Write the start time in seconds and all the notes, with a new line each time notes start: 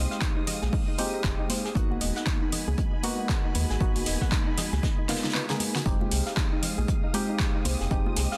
Already playing: G#3 C4 D#4 G4 F5 C6 D#6
0.11 F5, snare
0.21 D#4, kick, snare, clap, closed hi-hat, high conga
0.37 D#4
0.47 D#5, closed hi-hat, open hi-hat, low conga
0.62 A#1 G#4, snare, high conga
0.73 D#4, kick, open hi-hat
0.88 D#4
0.98 G#3 C4 D#4 F4 G4, closed hi-hat, open hi-hat, high conga
1.14 D#4
1.24 F1 G#4, kick, snare, clap, closed hi-hat
1.39 D#4
1.50 C5, closed hi-hat, open hi-hat, high conga
1.65 G#4, snare
1.75 G#1 G#3 A#3 B3 D#4 F#4 G#5 B5, kick, closed hi-hat
1.91 F#4, high conga
2.01 D#1 D#5, closed hi-hat, open hi-hat
2.16 F#5, snare
2.26 D#4, kick, snare, clap, closed hi-hat, high conga
2.42 D#4
2.52 D#5, closed hi-hat, open hi-hat, low conga
2.57 F#4
2.67 C#2 G#4, high conga
2.78 D#4, kick, closed hi-hat
2.93 D#4 B5
3.03 A#3 B3 D#4 F#4, closed hi-hat, open hi-hat, high conga
3.19 D#4
3.29 G#4, kick, snare, clap, closed hi-hat
3.45 D#4
3.55 D#2 B4, closed hi-hat, open hi-hat, high conga
3.70 G#1 G#4, snare
3.80 G#1 A#3 B3 D#4 F#4, kick, closed hi-hat
3.96 F#4, open hi-hat, high conga
4.06 D#1 D#5, snare, closed hi-hat, open hi-hat
4.21 F#5, kick, snare
4.32 D#4, kick, snare, clap, closed hi-hat, high conga
4.47 D#4
4.57 D#5, snare, closed hi-hat, open hi-hat, low conga
4.73 C#2 G#4, snare, high conga
4.83 D#4, kick, snare, closed hi-hat
4.98 D#4
5.09 A#3 B3 D#4 F4, snare, closed hi-hat, open hi-hat, high conga
5.16 snare, closed hi-hat
5.23 D#4, snare, closed hi-hat
5.30 snare, closed hi-hat
5.34 B4, snare, clap
5.49 A#3 B3 D#4 G#4 G#5, snare, closed hi-hat
5.60 G#4, closed hi-hat, open hi-hat, high conga
5.75 F#4, snare
5.85 F1 G#3 C4 D#4 G4 F5 D#6, kick, closed hi-hat
6.01 F4, high conga
6.06 F5
6.11 C2 G#4, closed hi-hat, open hi-hat
6.26 F5, snare
6.37 D#4, kick, snare, clap, closed hi-hat, high conga
6.52 D#4
6.63 D#5, closed hi-hat, open hi-hat, low conga
6.78 A#1 G#4, high conga
6.88 D#4, kick, closed hi-hat
7.04 D#4
7.13 G#3 C4 D#4 F4 G4 C6, closed hi-hat, open hi-hat, high conga
7.29 D#4
7.40 G#4, kick, snare, clap, closed hi-hat
7.55 D#4
7.65 C2 C5, closed hi-hat, open hi-hat, high conga
7.80 F1 G#4, snare
7.90 F1 G#3 C4 D#4 G4 D#5, kick, closed hi-hat
8.06 F4, high conga
8.16 C2 G#4, snare, closed hi-hat, open hi-hat
8.32 F5, snare